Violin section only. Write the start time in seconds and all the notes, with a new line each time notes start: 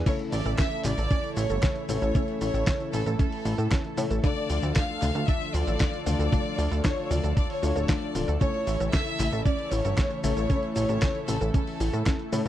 0.07 C#5
0.32 D5
0.58 E5
0.85 D5
1.37 C#5
1.89 C#5
2.41 C#5
2.93 A4
3.20 A4
4.24 D5
4.76 F5
5.29 E5
5.55 D5
6.07 D5
6.85 C#5
7.11 D5
7.37 D5
7.50 C#5
7.89 D5
8.41 C#5
8.93 E5
9.46 D5
9.72 C#5
10.24 C#5
10.76 C#5
11.28 A4
11.54 A4